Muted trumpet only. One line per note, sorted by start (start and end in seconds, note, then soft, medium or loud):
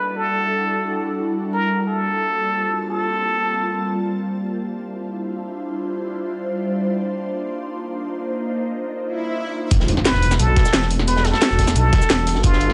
0.00 0.18 B4 loud
0.16 1.19 A4 loud
1.53 1.85 A#4 loud
1.87 2.85 A4 loud
2.90 4.05 A4 loud
10.05 10.41 B4 loud
10.39 10.91 A4 loud
11.08 11.26 B4 loud
11.25 11.75 A4 loud
11.76 12.40 A4 loud
12.44 12.73 F4 loud